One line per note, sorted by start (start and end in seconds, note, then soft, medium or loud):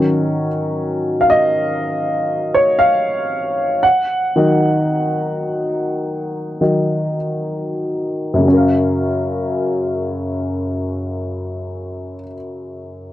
0.00 0.47 D#3 soft
0.00 0.47 F#3 soft
0.00 0.47 C#4 soft
1.21 1.28 F5 medium
1.30 2.58 D#5 medium
2.54 2.78 C#5 medium
2.79 3.86 F5 medium
3.83 7.16 F#5 medium
4.36 6.59 D#3 soft
4.36 6.60 F#3 soft
4.36 6.60 D#4 soft
6.61 7.17 D#3 soft
6.61 7.17 F#3 soft
6.61 7.17 D#4 soft
8.34 12.13 F#2 soft
8.38 12.18 C#3 soft
8.43 12.23 F#3 soft
8.48 12.27 C#4 soft
8.53 12.32 A#4 soft
8.57 12.37 F5 soft